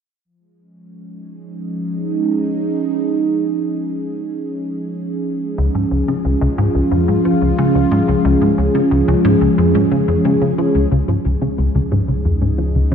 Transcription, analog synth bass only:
0, 0, Header, 1, 2, 480
1, 0, Start_track
1, 0, Key_signature, -5, "major"
1, 0, Tempo, 666667
1, 179, Time_signature, 4, 2, 24, 8
1, 9323, End_track
2, 0, Start_track
2, 0, Title_t, "Analog synth bass"
2, 0, Program_c, 0, 38
2, 4018, Note_on_c, 0, 37, 88
2, 4096, Note_off_c, 0, 37, 0
2, 4139, Note_on_c, 0, 44, 71
2, 4216, Note_off_c, 0, 44, 0
2, 4258, Note_on_c, 0, 37, 68
2, 4336, Note_off_c, 0, 37, 0
2, 4379, Note_on_c, 0, 49, 70
2, 4425, Note_off_c, 0, 49, 0
2, 4499, Note_on_c, 0, 37, 73
2, 4577, Note_off_c, 0, 37, 0
2, 4618, Note_on_c, 0, 37, 92
2, 4665, Note_off_c, 0, 37, 0
2, 4739, Note_on_c, 0, 44, 92
2, 4817, Note_off_c, 0, 44, 0
2, 4859, Note_on_c, 0, 37, 73
2, 4905, Note_off_c, 0, 37, 0
2, 4979, Note_on_c, 0, 41, 78
2, 5093, Note_off_c, 0, 41, 0
2, 5099, Note_on_c, 0, 44, 70
2, 5177, Note_off_c, 0, 44, 0
2, 5220, Note_on_c, 0, 53, 68
2, 5297, Note_off_c, 0, 53, 0
2, 5341, Note_on_c, 0, 37, 69
2, 5417, Note_off_c, 0, 37, 0
2, 5461, Note_on_c, 0, 49, 86
2, 5574, Note_off_c, 0, 49, 0
2, 5579, Note_on_c, 0, 37, 74
2, 5657, Note_off_c, 0, 37, 0
2, 5698, Note_on_c, 0, 44, 98
2, 5776, Note_off_c, 0, 44, 0
2, 5819, Note_on_c, 0, 37, 68
2, 5865, Note_off_c, 0, 37, 0
2, 5938, Note_on_c, 0, 37, 94
2, 6016, Note_off_c, 0, 37, 0
2, 6057, Note_on_c, 0, 44, 69
2, 6135, Note_off_c, 0, 44, 0
2, 6178, Note_on_c, 0, 37, 71
2, 6256, Note_off_c, 0, 37, 0
2, 6297, Note_on_c, 0, 49, 73
2, 6345, Note_off_c, 0, 49, 0
2, 6417, Note_on_c, 0, 37, 76
2, 6496, Note_off_c, 0, 37, 0
2, 6538, Note_on_c, 0, 37, 93
2, 6585, Note_off_c, 0, 37, 0
2, 6658, Note_on_c, 0, 44, 95
2, 6736, Note_off_c, 0, 44, 0
2, 6777, Note_on_c, 0, 37, 73
2, 6824, Note_off_c, 0, 37, 0
2, 6898, Note_on_c, 0, 41, 75
2, 7012, Note_off_c, 0, 41, 0
2, 7018, Note_on_c, 0, 44, 72
2, 7096, Note_off_c, 0, 44, 0
2, 7139, Note_on_c, 0, 49, 71
2, 7216, Note_off_c, 0, 49, 0
2, 7258, Note_on_c, 0, 41, 73
2, 7336, Note_off_c, 0, 41, 0
2, 7380, Note_on_c, 0, 49, 74
2, 7457, Note_off_c, 0, 49, 0
2, 7499, Note_on_c, 0, 49, 72
2, 7576, Note_off_c, 0, 49, 0
2, 7620, Note_on_c, 0, 53, 72
2, 7697, Note_off_c, 0, 53, 0
2, 7738, Note_on_c, 0, 37, 69
2, 7816, Note_off_c, 0, 37, 0
2, 7859, Note_on_c, 0, 37, 91
2, 7936, Note_off_c, 0, 37, 0
2, 7978, Note_on_c, 0, 44, 71
2, 8056, Note_off_c, 0, 44, 0
2, 8100, Note_on_c, 0, 37, 72
2, 8177, Note_off_c, 0, 37, 0
2, 8220, Note_on_c, 0, 49, 71
2, 8266, Note_off_c, 0, 49, 0
2, 8340, Note_on_c, 0, 37, 81
2, 8417, Note_off_c, 0, 37, 0
2, 8460, Note_on_c, 0, 37, 92
2, 8506, Note_off_c, 0, 37, 0
2, 8580, Note_on_c, 0, 44, 92
2, 8657, Note_off_c, 0, 44, 0
2, 8700, Note_on_c, 0, 37, 71
2, 8746, Note_off_c, 0, 37, 0
2, 8822, Note_on_c, 0, 41, 74
2, 8934, Note_off_c, 0, 41, 0
2, 8939, Note_on_c, 0, 44, 70
2, 9016, Note_off_c, 0, 44, 0
2, 9059, Note_on_c, 0, 53, 67
2, 9137, Note_off_c, 0, 53, 0
2, 9181, Note_on_c, 0, 37, 68
2, 9258, Note_off_c, 0, 37, 0
2, 9299, Note_on_c, 0, 49, 93
2, 9323, Note_off_c, 0, 49, 0
2, 9323, End_track
0, 0, End_of_file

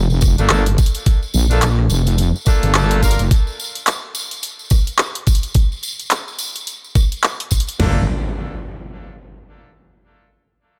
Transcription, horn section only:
0, 0, Header, 1, 2, 480
1, 0, Start_track
1, 0, Key_signature, -2, "minor"
1, 0, Tempo, 560748
1, 912, Time_signature, 4, 2, 24, 8
1, 9239, End_track
2, 0, Start_track
2, 0, Title_t, "Horn section"
2, 0, Program_c, 0, 61
2, 330, Note_on_c, 0, 57, 92
2, 330, Note_on_c, 0, 58, 91
2, 330, Note_on_c, 0, 69, 100
2, 331, Note_on_c, 0, 62, 83
2, 331, Note_on_c, 0, 65, 83
2, 555, Note_off_c, 0, 58, 0
2, 556, Note_off_c, 0, 57, 0
2, 556, Note_off_c, 0, 62, 0
2, 556, Note_off_c, 0, 65, 0
2, 556, Note_off_c, 0, 69, 0
2, 1286, Note_on_c, 0, 62, 71
2, 1287, Note_on_c, 0, 58, 76
2, 1288, Note_on_c, 0, 65, 72
2, 1289, Note_on_c, 0, 57, 79
2, 1289, Note_on_c, 0, 69, 86
2, 1413, Note_off_c, 0, 62, 0
2, 1414, Note_off_c, 0, 58, 0
2, 1414, Note_off_c, 0, 65, 0
2, 1415, Note_off_c, 0, 57, 0
2, 1415, Note_off_c, 0, 69, 0
2, 2109, Note_on_c, 0, 58, 91
2, 2109, Note_on_c, 0, 62, 83
2, 2110, Note_on_c, 0, 57, 92
2, 2110, Note_on_c, 0, 69, 100
2, 2111, Note_on_c, 0, 65, 85
2, 2321, Note_off_c, 0, 57, 0
2, 2321, Note_off_c, 0, 58, 0
2, 2321, Note_off_c, 0, 62, 0
2, 2321, Note_off_c, 0, 69, 0
2, 2322, Note_off_c, 0, 65, 0
2, 2351, Note_on_c, 0, 57, 93
2, 2351, Note_on_c, 0, 69, 102
2, 2352, Note_on_c, 0, 58, 94
2, 2352, Note_on_c, 0, 62, 85
2, 2352, Note_on_c, 0, 65, 85
2, 2567, Note_off_c, 0, 57, 0
2, 2567, Note_off_c, 0, 69, 0
2, 2568, Note_off_c, 0, 58, 0
2, 2568, Note_off_c, 0, 62, 0
2, 2568, Note_off_c, 0, 65, 0
2, 2591, Note_on_c, 0, 70, 98
2, 2592, Note_on_c, 0, 58, 88
2, 2593, Note_on_c, 0, 65, 82
2, 2594, Note_on_c, 0, 62, 83
2, 2751, Note_off_c, 0, 58, 0
2, 2751, Note_off_c, 0, 65, 0
2, 2751, Note_off_c, 0, 70, 0
2, 2752, Note_off_c, 0, 62, 0
2, 6672, Note_on_c, 0, 57, 85
2, 6672, Note_on_c, 0, 58, 84
2, 6672, Note_on_c, 0, 69, 93
2, 6673, Note_on_c, 0, 62, 76
2, 6673, Note_on_c, 0, 65, 79
2, 6858, Note_off_c, 0, 58, 0
2, 6859, Note_off_c, 0, 57, 0
2, 6859, Note_off_c, 0, 62, 0
2, 6859, Note_off_c, 0, 65, 0
2, 6859, Note_off_c, 0, 69, 0
2, 9239, End_track
0, 0, End_of_file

